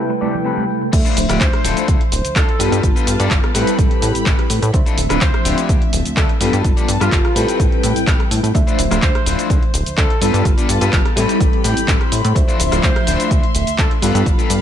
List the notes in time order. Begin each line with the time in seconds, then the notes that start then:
Already playing: C3 G3 A3 E4 A4 B4 G5
0.10 muted clean electric guitar stroke, tambourine
0.21 C4 G4 A4 D5, tambourine, high conga
0.34 tambourine, low conga
0.45 C4 G4 A4 B4, tambourine
0.57 tambourine, high conga
0.69 tambourine
0.81 muted clean electric guitar stroke, tambourine
0.92 D2 F3 A3 D4 C5 E5, muted clean electric guitar stroke, kick, closed hi-hat, crash, cabasa
1.05 D4 E4 F4 C5, closed hi-hat, cabasa
1.17 D1, open hi-hat, cabasa
1.29 D1 D4 E4 F4 G4, cross-stick, closed hi-hat, cabasa
1.40 D2 C5, kick, clap, closed hi-hat, cabasa
1.53 cross-stick, closed hi-hat
1.64 D1 D4 E4 F4 A4, open hi-hat, cabasa
1.77 closed hi-hat, cabasa
1.88 D2, kick, closed hi-hat, cabasa
2.01 closed hi-hat
2.12 D1, open hi-hat, cabasa
2.25 D2, closed hi-hat, cabasa
2.35 D2 D4 E4 F4 A4 C5, kick, clap, closed hi-hat, cabasa
2.49 closed hi-hat
2.59 G2 G3 B3 D4 F4 G4 A4 B4 A5, open hi-hat, cabasa
2.72 G2, closed hi-hat, cabasa
2.83 G1, kick, closed hi-hat, cabasa
2.96 F4 G4 A4 B4, closed hi-hat, cabasa
3.07 G2, open hi-hat, cabasa
3.19 G2 F4 G4 A4 D5, closed hi-hat, cabasa
3.31 G1, kick, clap, closed hi-hat, cabasa
3.44 cross-stick, closed hi-hat
3.54 A2 G3 C4 E4 G4 A4 B4 B5, open hi-hat, cabasa
3.67 closed hi-hat, cabasa
3.78 A1, kick, closed hi-hat, cabasa
3.91 closed hi-hat
4.02 A2, open hi-hat, cabasa
4.15 A1, closed hi-hat, cabasa
4.26 A1 C4 G4 A4 B4, kick, clap, closed hi-hat, cabasa
4.39 cross-stick, closed hi-hat
4.50 A2, muted clean electric guitar stroke, open hi-hat, cabasa
4.62 A2, closed hi-hat, cabasa
4.73 D2 F3 A3 C4 D4 E5, muted clean electric guitar stroke, kick, closed hi-hat, cabasa
4.86 D4 E4 F4 A4, closed hi-hat, cabasa
4.97 D1, open hi-hat, cabasa
5.09 D1 D4 E4 F4 B4, cross-stick, closed hi-hat, cabasa
5.21 D2 C5, kick, clap, closed hi-hat, cabasa
5.34 cross-stick, closed hi-hat
5.45 D1 D4 E4 F4 G4, open hi-hat, cabasa
5.58 closed hi-hat, cabasa
5.69 D2, kick, closed hi-hat, cabasa
5.82 closed hi-hat
5.93 D1, open hi-hat, cabasa
6.05 closed hi-hat, cabasa
6.16 D2 D4 E4 F4 A4 B4, kick, clap, closed hi-hat, cabasa
6.29 closed hi-hat
6.40 G2 G3 B3 D4 F4 G4 A4 B4 A5, open hi-hat, cabasa
6.53 G2, closed hi-hat, cabasa
6.64 G1, kick, closed hi-hat, cabasa
6.77 F4 G4 A4 D5, closed hi-hat, cabasa
6.88 G2, open hi-hat, cabasa
7.00 G2 F4 G4 A4 B4, cross-stick, closed hi-hat, cabasa
7.12 G1, kick, clap, closed hi-hat, cabasa
7.25 cross-stick, closed hi-hat
7.35 A2 G3 C4 E4 G4 A4 B4 G5, open hi-hat, cabasa
7.48 closed hi-hat, cabasa
7.60 A1, kick, closed hi-hat, cabasa
7.72 closed hi-hat
7.83 A2, open hi-hat, cabasa
7.96 A1, closed hi-hat, cabasa
8.07 A1 C4 G4 A4 B4, kick, clap, closed hi-hat, cabasa
8.20 cross-stick, closed hi-hat
8.31 A2, muted clean electric guitar stroke, open hi-hat, cabasa
8.43 A2, closed hi-hat, cabasa
8.54 D2 F3 A3 D4 C5 E5, muted clean electric guitar stroke, kick, closed hi-hat, cabasa
8.67 D4 E4 F4 C5, closed hi-hat, cabasa
8.78 D1, open hi-hat, cabasa
8.91 D1 D4 E4 F4 C5, cross-stick, closed hi-hat, cabasa
9.02 D2 C5, kick, clap, closed hi-hat, cabasa
9.15 cross-stick, closed hi-hat
9.26 D1 D4 E4 F4 C5, open hi-hat, cabasa
9.39 closed hi-hat, cabasa
9.50 D2, kick, closed hi-hat, cabasa
9.63 closed hi-hat
9.74 D1, open hi-hat, cabasa
9.86 D2, closed hi-hat, cabasa
9.97 D2 D4 E4 F4 A4 C5, kick, clap, closed hi-hat, cabasa
10.10 closed hi-hat
10.21 G2 G3 B3 D4 F4 G4 A4 B4 A5, open hi-hat, cabasa
10.34 G2, closed hi-hat, cabasa
10.45 G1, kick, closed hi-hat, cabasa
10.58 F4 G4 A4 D5, closed hi-hat, cabasa
10.69 G2, open hi-hat, cabasa
10.81 G2 F4 G4 A4 B4, closed hi-hat, cabasa
10.93 G1, kick, clap, closed hi-hat, cabasa
11.05 cross-stick, closed hi-hat
11.16 A2 G3 C4 E4 G4 A4 B4 B5, open hi-hat, cabasa
11.29 closed hi-hat, cabasa
11.40 A1, kick, closed hi-hat, cabasa
11.53 closed hi-hat
11.64 A2 G5, open hi-hat, cabasa
11.77 A1, closed hi-hat, cabasa
11.87 A1 C4 G4 A4 B4 C5, kick, clap, closed hi-hat, cabasa
12.01 cross-stick, closed hi-hat
12.12 A2, muted clean electric guitar stroke, open hi-hat, cabasa
12.24 A2, closed hi-hat, cabasa
12.35 D2 F3 A3 D4 C5 E5 C6, muted clean electric guitar stroke, kick, closed hi-hat, cabasa
12.48 D4 E4 F4 C5, closed hi-hat, cabasa
12.60 D1, open hi-hat, cabasa
12.71 D1 D4 E4 F4 C5, cross-stick, closed hi-hat, cabasa
12.83 D2 C5, kick, clap, closed hi-hat, cabasa
12.96 cross-stick, closed hi-hat
13.07 D1 D4 E4 F4 C5, open hi-hat, cabasa
13.20 closed hi-hat, cabasa
13.31 D2, kick, closed hi-hat, cabasa
13.43 closed hi-hat
13.55 D1, open hi-hat, cabasa
13.67 closed hi-hat, cabasa
13.78 D2 D4 E4 F4 A4 C5, kick, clap, closed hi-hat, cabasa
13.91 closed hi-hat
14.02 G2 G3 B3 D4 F4 G4 A4 B4 F5 B5, open hi-hat, cabasa
14.14 G2, closed hi-hat, cabasa
14.26 G1, kick, closed hi-hat, cabasa
14.38 F4 G4 A4 B4, closed hi-hat, cabasa
14.50 G2, open hi-hat, cabasa